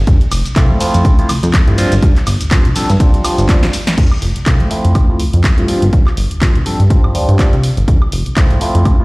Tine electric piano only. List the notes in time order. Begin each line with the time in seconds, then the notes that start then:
0.56 F3 A3 C4 E4 F4
0.80 F3 A3 C4 E4 F4
1.18 F3 A3 C4 E4 F4
1.67 F3 A3 C4 E4 F4
1.77 F3 G3 C4 D4 F4
2.51 F3 G3 C4 D4 F4
2.75 F3 G3 C4 D4 A4
3.00 F3 G3 C4 D4 F4
3.24 F3 G3 C4 D4 F4
3.49 F3 G3 C4 D4 F4
4.46 F3 A3 C4 E4 F4
4.70 F3 A3 C4 E4 F4
5.09 F3 A3 C4 E4 F4
5.58 F3 A3 C4 E4 F4
5.68 F3 G3 C4 D4 F4
6.41 F3 G3 C4 D4 F4
6.66 F3 G3 C4 D4 A4
6.90 F3 G3 C4 D4 F4
7.14 F3 G3 C4 D4 F4
7.39 F3 G3 C4 D4 F4
8.36 F3 A3 C4 E4 F4
8.61 F3 A3 C4 E4 F4
8.99 F3 A3 C4 E4 F4